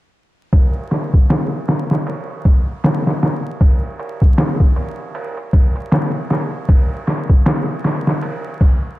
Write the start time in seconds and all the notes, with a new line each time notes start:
0.53 kick, ride
0.91 snare, ride
1.14 kick
1.30 snare, ride
1.68 snare, ride
1.91 snare
2.07 ride
2.45 kick, open hi-hat
2.84 snare, ride
3.07 snare
3.23 snare, ride
3.61 kick, ride
3.99 ride
4.22 kick
4.38 snare, ride
4.60 kick
4.76 ride
5.15 ride
5.37 ride
5.53 kick, ride
5.76 ride
5.92 snare, ride
6.30 snare, ride
6.69 kick, ride
7.07 snare, ride
7.30 kick
7.46 snare, ride
7.84 snare, ride
8.07 snare
8.22 ride
8.61 kick, open hi-hat